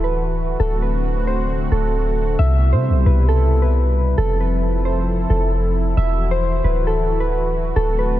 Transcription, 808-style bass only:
0, 0, Header, 1, 2, 480
1, 0, Start_track
1, 0, Key_signature, 1, "minor"
1, 0, Tempo, 447761
1, 642, Time_signature, 4, 2, 24, 8
1, 8788, End_track
2, 0, Start_track
2, 0, Title_t, "808-style bass"
2, 0, Program_c, 0, 38
2, 0, Note_on_c, 0, 26, 106
2, 599, Note_off_c, 0, 26, 0
2, 642, Note_on_c, 0, 26, 112
2, 1799, Note_off_c, 0, 26, 0
2, 1842, Note_on_c, 0, 26, 109
2, 2533, Note_off_c, 0, 26, 0
2, 2561, Note_on_c, 0, 36, 106
2, 2922, Note_on_c, 0, 48, 104
2, 2938, Note_off_c, 0, 36, 0
2, 3101, Note_on_c, 0, 36, 99
2, 3117, Note_off_c, 0, 48, 0
2, 3273, Note_off_c, 0, 36, 0
2, 3282, Note_on_c, 0, 36, 105
2, 4439, Note_off_c, 0, 36, 0
2, 4481, Note_on_c, 0, 29, 111
2, 5639, Note_off_c, 0, 29, 0
2, 5681, Note_on_c, 0, 29, 106
2, 6373, Note_off_c, 0, 29, 0
2, 6402, Note_on_c, 0, 28, 114
2, 7093, Note_off_c, 0, 28, 0
2, 7122, Note_on_c, 0, 26, 105
2, 8279, Note_off_c, 0, 26, 0
2, 8322, Note_on_c, 0, 26, 111
2, 8788, Note_off_c, 0, 26, 0
2, 8788, End_track
0, 0, End_of_file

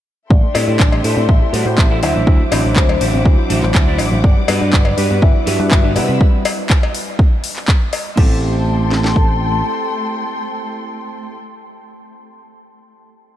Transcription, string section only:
0, 0, Header, 1, 2, 480
1, 0, Start_track
1, 0, Tempo, 491803
1, 299, Time_signature, 4, 2, 24, 8
1, 13048, End_track
2, 0, Start_track
2, 0, Title_t, "String section"
2, 0, Program_c, 0, 48
2, 298, Note_on_c, 0, 69, 76
2, 299, Note_on_c, 0, 79, 69
2, 301, Note_on_c, 0, 76, 74
2, 301, Note_on_c, 0, 84, 88
2, 1962, Note_off_c, 0, 69, 0
2, 1962, Note_off_c, 0, 79, 0
2, 1963, Note_off_c, 0, 76, 0
2, 1963, Note_off_c, 0, 84, 0
2, 1978, Note_on_c, 0, 78, 74
2, 1978, Note_on_c, 0, 86, 88
2, 1979, Note_on_c, 0, 72, 75
2, 1979, Note_on_c, 0, 76, 71
2, 4117, Note_off_c, 0, 72, 0
2, 4117, Note_off_c, 0, 76, 0
2, 4137, Note_on_c, 0, 71, 79
2, 5780, Note_off_c, 0, 78, 0
2, 5780, Note_off_c, 0, 86, 0
2, 5801, Note_off_c, 0, 71, 0
2, 5815, Note_on_c, 0, 83, 70
2, 5817, Note_on_c, 0, 72, 76
2, 5817, Note_on_c, 0, 88, 80
2, 6054, Note_off_c, 0, 83, 0
2, 6055, Note_off_c, 0, 72, 0
2, 6055, Note_off_c, 0, 88, 0
2, 7979, Note_on_c, 0, 84, 86
2, 7980, Note_on_c, 0, 69, 71
2, 7980, Note_on_c, 0, 79, 74
2, 7981, Note_on_c, 0, 57, 79
2, 11086, Note_off_c, 0, 69, 0
2, 11086, Note_off_c, 0, 79, 0
2, 11086, Note_off_c, 0, 84, 0
2, 11087, Note_off_c, 0, 57, 0
2, 13048, End_track
0, 0, End_of_file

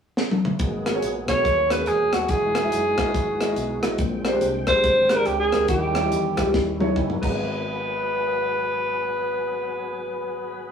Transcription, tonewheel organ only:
0, 0, Header, 1, 2, 480
1, 0, Start_track
1, 0, Key_signature, 5, "minor"
1, 0, Tempo, 423729
1, 675, Time_signature, 4, 2, 24, 8
1, 12141, End_track
2, 0, Start_track
2, 0, Title_t, "Tonewheel organ"
2, 0, Program_c, 0, 16
2, 673, Note_on_c, 0, 54, 58
2, 673, Note_on_c, 0, 58, 52
2, 673, Note_on_c, 0, 68, 66
2, 674, Note_on_c, 0, 59, 49
2, 2577, Note_off_c, 0, 54, 0
2, 2577, Note_off_c, 0, 58, 0
2, 2577, Note_off_c, 0, 68, 0
2, 2578, Note_off_c, 0, 59, 0
2, 2601, Note_on_c, 0, 63, 54
2, 2602, Note_on_c, 0, 52, 57
2, 2602, Note_on_c, 0, 56, 51
2, 2603, Note_on_c, 0, 66, 64
2, 4504, Note_off_c, 0, 52, 0
2, 4504, Note_off_c, 0, 63, 0
2, 4504, Note_off_c, 0, 66, 0
2, 4514, Note_on_c, 0, 60, 58
2, 4517, Note_on_c, 0, 79, 65
2, 4518, Note_on_c, 0, 50, 59
2, 6408, Note_off_c, 0, 56, 0
2, 6421, Note_off_c, 0, 60, 0
2, 6423, Note_off_c, 0, 50, 0
2, 6423, Note_off_c, 0, 79, 0
2, 6447, Note_on_c, 0, 55, 53
2, 6447, Note_on_c, 0, 61, 57
2, 6449, Note_on_c, 0, 64, 68
2, 6451, Note_on_c, 0, 51, 59
2, 8169, Note_off_c, 0, 55, 0
2, 8169, Note_off_c, 0, 61, 0
2, 8171, Note_off_c, 0, 51, 0
2, 8171, Note_off_c, 0, 64, 0
2, 8185, Note_on_c, 0, 54, 49
2, 8186, Note_on_c, 0, 68, 48
2, 8186, Note_on_c, 0, 71, 60
2, 8188, Note_on_c, 0, 59, 51
2, 12140, Note_off_c, 0, 54, 0
2, 12141, Note_off_c, 0, 59, 0
2, 12141, Note_off_c, 0, 68, 0
2, 12141, Note_off_c, 0, 71, 0
2, 12141, End_track
0, 0, End_of_file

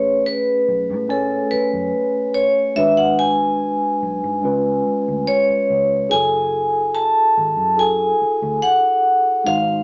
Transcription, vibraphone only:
0, 0, Header, 1, 2, 480
1, 0, Start_track
1, 0, Tempo, 835655
1, 1588, Time_signature, 4, 2, 24, 8
1, 5649, End_track
2, 0, Start_track
2, 0, Title_t, "Vibraphone"
2, 0, Program_c, 0, 11
2, 0, Note_on_c, 0, 73, 85
2, 131, Note_off_c, 0, 73, 0
2, 151, Note_on_c, 0, 71, 80
2, 633, Note_on_c, 0, 69, 69
2, 644, Note_off_c, 0, 71, 0
2, 867, Note_on_c, 0, 71, 76
2, 878, Note_off_c, 0, 69, 0
2, 1346, Note_on_c, 0, 73, 74
2, 1362, Note_off_c, 0, 71, 0
2, 1586, Note_on_c, 0, 76, 96
2, 1594, Note_off_c, 0, 73, 0
2, 1708, Note_on_c, 0, 78, 76
2, 1711, Note_off_c, 0, 76, 0
2, 1831, Note_off_c, 0, 78, 0
2, 1832, Note_on_c, 0, 80, 94
2, 3029, Note_on_c, 0, 73, 86
2, 3066, Note_off_c, 0, 80, 0
2, 3510, Note_on_c, 0, 80, 101
2, 3523, Note_off_c, 0, 73, 0
2, 3990, Note_on_c, 0, 81, 98
2, 4003, Note_off_c, 0, 80, 0
2, 4476, Note_on_c, 0, 80, 89
2, 4484, Note_off_c, 0, 81, 0
2, 4953, Note_on_c, 0, 78, 90
2, 4967, Note_off_c, 0, 80, 0
2, 5437, Note_on_c, 0, 77, 97
2, 5446, Note_off_c, 0, 78, 0
2, 5649, Note_off_c, 0, 77, 0
2, 5649, End_track
0, 0, End_of_file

